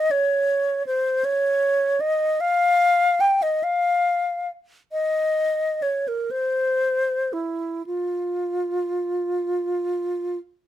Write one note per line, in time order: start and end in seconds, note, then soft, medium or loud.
0.00 0.12 D#5 medium
0.11 0.86 C#5 medium
0.86 1.26 C5 medium
1.25 2.02 C#5 medium
2.00 2.42 D#5 medium
2.40 3.22 F5 medium
3.20 3.44 G5 medium
3.42 3.65 D#5 medium
3.63 4.49 F5 medium
4.92 5.84 D#5 medium
5.82 6.09 C#5 medium
6.08 6.32 A#4 soft
6.31 7.34 C5 medium
7.33 7.86 E4 soft
7.86 10.38 F4 soft